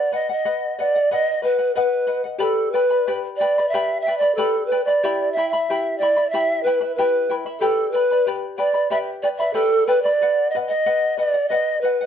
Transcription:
Already playing: B4 D5 F#5
0.12 B4 D#5 F#5
0.29 D#5 F#5
0.45 B4 D#5 F#5
0.79 B4 D5 D#5 F#5
0.95 D#5 F#5
1.11 B4 D#5 F#5
1.42 B4 D#5 F#5
1.59 D#5 F#5
1.75 B4 D#5 F#5
2.07 B4 D#5 F#5
2.24 D#5 F#5
2.39 G4 A4 B4 D5 G5 B5
2.72 B4 D5 G5 B5
2.90 B4 D5 B5
3.07 G4 B4 D5 G5 B5
3.36 D5
3.40 B4 D5 G5 B5
3.58 B4 D5 B5
3.68 E5
3.74 G4 B4 D5 G5 B5
4.01 E5
4.07 B4 D5 G5 B5
4.18 D5 B5
4.22 B4 D5
4.35 G4 A4 B4 D5 G5
4.39 B5
4.66 B4
4.72 B4 D5 G5 B5
4.84 B4 D5 B5
5.03 E4 G4 E5 G5 B5
5.32 E5
5.37 E4 E5 G5 B5
5.49 E5 B5
5.54 E4 E5
5.70 E4 G4 E5 G5 B5
5.98 E4 D5 G5
6.02 E5 B5
6.16 E4 E5 B5
6.30 E5
6.34 E4 G4 E5 G5 B5
6.63 E4 B4 E5 G5
6.67 B5
6.81 E4 E5 B5
6.95 E4 G4 B4 G5
6.99 E5 B5
7.30 E4 E5 G5 B5
7.46 E4 E5 B5
7.60 G4 A4 B4 D5 G5 B5
7.91 B4 D5 G5
7.95 B5
8.11 B4 D5 B5
8.26 G4 B4 D5 G5 B5
8.58 B4 D5 G5 B5
8.74 B4 D5 B5
8.90 G4 B4 D5 E5 G5 B5
9.22 B4 D5 G5 B5
9.38 B4 D5 E5 B5
9.54 G4 A4 B4 D5 G5 B5
9.87 B4 D5 G5 B5
10.02 B4 D5 B5
10.21 B4 F#5
10.50 D#5
10.55 B4 D#5 F#5
10.68 D#5 F#5
10.86 B4 D#5 F#5
11.17 B4 D5 D#5 F#5
11.34 D#5 F#5
11.48 B4 D#5 F#5
11.81 B4 D#5 F#5
12.01 D#5 F#5

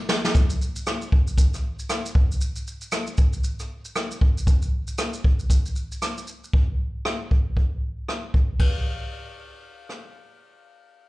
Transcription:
0.09 snare
0.25 snare
0.35 kick, shaker
0.50 shaker
0.62 shaker
0.76 shaker
0.87 cross-stick, shaker
1.02 shaker
1.12 kick
1.27 shaker
1.38 kick, shaker
1.54 cross-stick, shaker
1.79 shaker
1.89 cross-stick, shaker
2.06 shaker
2.15 kick
2.32 shaker
2.41 shaker
2.56 shaker
2.67 shaker
2.81 shaker
2.92 cross-stick, shaker
3.07 shaker
3.17 kick, shaker
3.33 shaker
3.44 shaker
3.59 cross-stick, shaker
3.85 shaker
3.96 cross-stick, shaker
4.11 shaker
4.21 kick
4.38 shaker
4.47 kick, shaker
4.62 shaker
4.87 shaker
4.98 cross-stick, shaker
5.13 shaker
5.24 kick
5.39 shaker
5.50 kick, shaker
5.66 shaker
5.76 shaker
5.92 shaker
6.02 cross-stick, shaker
6.18 shaker
6.27 shaker
6.44 shaker
6.53 kick
7.05 cross-stick
7.31 kick
7.57 kick
8.09 cross-stick
8.34 kick
8.59 kick, ride
9.89 cross-stick

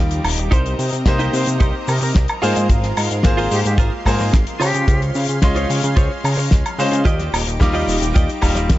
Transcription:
Already playing: D#2 G3 D#4 F4 G4 D6
0.11 closed hi-hat
0.24 D#1, open hi-hat, high woodblock
0.37 D#1, muted clean electric guitar stroke, closed hi-hat
0.51 C2 C4 D#4 G4 A#4 C5 D#5, kick, closed hi-hat, shaker
0.66 closed hi-hat
0.79 C3, open hi-hat, shaker
0.93 C3, closed hi-hat, shaker
1.06 C2 A#3 D#4 G4 C5, kick, snare, closed hi-hat, shaker
1.19 D#4 G4 A#4 C5, closed hi-hat
1.33 C3 C5, open hi-hat, shaker
1.47 C3, closed hi-hat, shaker
1.60 C2 D#4 G4 A#4 C5, kick, closed hi-hat, shaker
1.87 C3 A#4, muted clean electric guitar stroke, open hi-hat, high woodblock, shaker
2.01 C3 A#4, muted clean electric guitar stroke, shaker
2.14 C2, muted clean electric guitar stroke, kick, snare, closed hi-hat, shaker
2.28 closed hi-hat, high woodblock
2.42 G#2 G#3 A#3 F4 G#4 A#4 C5 C6, open hi-hat, shaker
2.56 G#2, closed hi-hat, shaker
2.69 G#1, kick, closed hi-hat, shaker
2.83 snare, closed hi-hat
2.97 G#2, open hi-hat, high woodblock, shaker
3.11 G#2, closed hi-hat, shaker
3.23 G#1 A#3 F4 G#4 C5, kick, snare, closed hi-hat, shaker
3.37 F4 G#4 A#4 C5, open hi-hat
3.51 G#2 G4, open hi-hat, shaker
3.65 G#2 G4, closed hi-hat, shaker
3.78 G#1 F4 G#4 A#4 C5, kick, closed hi-hat, shaker
4.05 G#2 A#3 F4 G#4 C5, muted clean electric guitar stroke, kick, open hi-hat, high woodblock, shaker
4.19 G#2, muted clean electric guitar stroke, snare, shaker
4.33 G#1, muted clean electric guitar stroke, kick, snare, closed hi-hat, shaker
4.47 closed hi-hat
4.60 C#3 C#4 F4 G4 G#4 C5 C#5 F5, open hi-hat, high woodblock, shaker
4.74 C#3, closed hi-hat, shaker
4.88 C#2, kick, closed hi-hat, shaker
5.02 closed hi-hat
5.15 C#3, open hi-hat, shaker
5.29 C#3, closed hi-hat, shaker
5.42 C#2 G#3 C#4 F4 C6, kick, snare, closed hi-hat, shaker
5.55 F4 G#4 C5 C#5, closed hi-hat
5.70 C#3, open hi-hat, shaker
5.84 C#3, closed hi-hat, shaker
5.96 C#2 F4 G#4 C5 C#5, kick, closed hi-hat, shaker
6.23 C#3, muted clean electric guitar stroke, open hi-hat, high woodblock, shaker
6.37 C#3, muted clean electric guitar stroke, shaker
6.51 C#2, muted clean electric guitar stroke, kick, snare, closed hi-hat, shaker
6.66 closed hi-hat, high woodblock
6.78 C#3 G#3 C#4 F4 C5, open hi-hat, shaker
6.92 C#3, muted clean electric guitar stroke, closed hi-hat, shaker
7.05 D#2 D#4 F4 G4 D5 D#5 D6, kick, closed hi-hat, shaker
7.20 snare, closed hi-hat
7.33 D#1, open hi-hat, high woodblock, shaker
7.47 D#1, closed hi-hat, shaker
7.60 D#2 G3 D#4 F4 D6, kick, snare, closed hi-hat, shaker
7.73 F4 G4 D5 D#5, open hi-hat
7.88 D#1, open hi-hat, shaker
8.02 D#1, closed hi-hat, shaker
8.14 D#2 F4 G4 D5 D#5, kick, closed hi-hat, shaker
8.29 closed hi-hat
8.42 D#1 G3 D#4 F4, muted clean electric guitar stroke, kick, open hi-hat, high woodblock, shaker
8.55 D#1, muted clean electric guitar stroke, snare, closed hi-hat, shaker
8.69 D#2, muted clean electric guitar stroke, kick, snare, closed hi-hat, shaker

